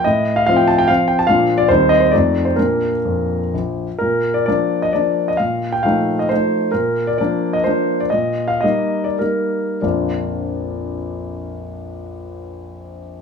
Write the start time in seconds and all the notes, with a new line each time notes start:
0.04 A2 D#5
0.36 F5
0.46 F3 C4 F4 F5
0.56 G5
0.68 A5
0.78 G5
0.88 F3 C4 F4 F5
1.08 G5
1.19 A5
1.27 A#2 F3 D4 F4 F5
1.58 D5
1.69 D#2 G3 C4 D#4 C5
1.89 D#5
2.00 C5
2.11 F2 A3 C4 D#4 D5
2.45 C5
2.56 A#2 A#3 D4 A#4
3.05 F2
3.54 A#1
3.99 A#2 A#4
4.34 D5
4.46 F3 A#3 D4 D5
4.82 D#5
4.93 F3 A#3 D4 D5
5.28 D#5
5.37 A#2 F5
5.72 G5
5.83 F3 A3 D#4 F5
6.19 D#5
6.29 F3 A3 D#4 C5
6.71 A#2 A#4
7.07 D5
7.18 F3 A#3 D4 D5
7.53 D#5
7.64 F3 A#3 D4 C5
8.00 D5
8.10 A#2 D#5
8.48 F5
8.61 G3 A#3 D#4 D#5
9.04 D5
9.19 G3 A#3 D#4 A#4
9.81 A#1 F2 F3 A#3 D4 F4 D5